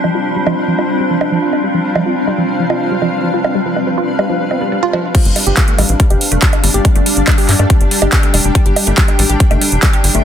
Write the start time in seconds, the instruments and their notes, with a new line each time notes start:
Already playing: synth drone G3 D4, ambient pad C4 F4 C5 F5
0.04 synth arpeggio sound F3, high bongo
0.15 synth arpeggio sound F4
0.36 synth arpeggio sound G3
0.47 synth arpeggio sound F3, high bongo
0.68 synth arpeggio sound F3
0.79 synth arpeggio sound F4, high bongo
1.00 synth arpeggio sound G3
1.10 synth arpeggio sound F3
1.21 high bongo
1.32 synth arpeggio sound F3
1.42 synth arpeggio sound F4
1.53 high bongo
1.64 synth arpeggio sound G3
1.74 synth arpeggio sound F3
1.96 synth arpeggio sound F3, high bongo
2.06 synth arpeggio sound F4
2.16 ambient pad B4
2.27 synth arpeggio sound G3, high bongo
2.38 synth arpeggio sound F3
2.59 synth arpeggio sound F3
2.70 synth arpeggio sound F4, high bongo
2.91 synth arpeggio sound G3
3.02 synth arpeggio sound F3, high bongo
3.23 synth arpeggio sound F3
3.34 synth arpeggio sound F4
3.44 high bongo
3.55 synth arpeggio sound G3
3.66 synth arpeggio sound F3
3.76 high bongo
3.87 synth arpeggio sound F3
3.98 synth arpeggio sound F4
4.19 synth arpeggio sound G3, high bongo
4.30 synth arpeggio sound F3
4.51 synth arpeggio sound C4, high bongo
4.61 synth arpeggio sound G3
4.72 synth arpeggio sound G3
4.83 synth arpeggio sound F4
4.93 synth arpeggio sound F3, high bongo
5.15 synth arpeggio sound G3, synth drone G3 D4, ambient pad D4, kick, closed hi-hat, crash
5.25 analog synth bass G1, closed hi-hat
5.36 synth arpeggio sound G3, open hi-hat, high bongo
5.42 ambient pad G4 D5
5.47 analog synth bass G1, synth arpeggio sound G4, closed hi-hat
5.57 kick, clap, closed hi-hat
5.68 synth arpeggio sound A3, closed hi-hat
5.78 analog synth bass A1, synth arpeggio sound G3, open hi-hat, high bongo
5.89 analog synth bass A1, closed hi-hat
6.00 synth arpeggio sound G3, kick, closed hi-hat
6.10 analog synth bass F1, synth arpeggio sound G4, closed hi-hat, high bongo
6.21 open hi-hat
6.32 analog synth bass F1, synth arpeggio sound A3, closed hi-hat
6.42 synth arpeggio sound G3, ambient pad G5, kick, clap, closed hi-hat
6.53 closed hi-hat, high bongo
6.64 analog synth bass G1, synth arpeggio sound G3, open hi-hat
6.74 analog synth bass G1, synth arpeggio sound G4, closed hi-hat
6.85 kick, closed hi-hat, high bongo
6.96 analog synth bass G1, synth arpeggio sound A3, closed hi-hat
7.06 synth arpeggio sound G3, open hi-hat
7.17 analog synth bass G1, closed hi-hat
7.27 synth arpeggio sound G3, kick, clap, closed hi-hat, high bongo
7.38 synth arpeggio sound G4, open hi-hat
7.49 analog synth bass G2, clap, open hi-hat
7.59 analog synth bass G2, synth arpeggio sound A3, high bongo
7.70 synth arpeggio sound G3, kick, closed hi-hat
7.81 analog synth bass G1, closed hi-hat
7.91 synth arpeggio sound G3, open hi-hat
8.02 analog synth bass G1, synth arpeggio sound G4, high bongo
8.13 kick, clap, closed hi-hat
8.23 synth arpeggio sound A3, closed hi-hat
8.34 analog synth bass F1, synth arpeggio sound G3, open hi-hat, high bongo
8.44 analog synth bass F1, closed hi-hat
8.55 synth arpeggio sound G3, kick, closed hi-hat
8.66 analog synth bass G1, synth arpeggio sound G4, closed hi-hat
8.75 ambient pad C5, open hi-hat, high bongo
8.87 analog synth bass G1, synth arpeggio sound A3, closed hi-hat
8.98 synth arpeggio sound G3, kick, clap, closed hi-hat
9.08 closed hi-hat, high bongo
9.19 analog synth bass A1, synth arpeggio sound G3, open hi-hat
9.30 analog synth bass A1, synth arpeggio sound G4, closed hi-hat
9.40 kick, closed hi-hat
9.51 analog synth bass F1, synth arpeggio sound A3, closed hi-hat, high bongo
9.61 synth arpeggio sound G3, open hi-hat
9.72 analog synth bass F1, closed hi-hat
9.83 synth arpeggio sound G3, kick, clap, closed hi-hat, high bongo
9.93 synth arpeggio sound G4, closed hi-hat
10.04 analog synth bass G1, open hi-hat
10.15 analog synth bass G1, synth arpeggio sound A3, closed hi-hat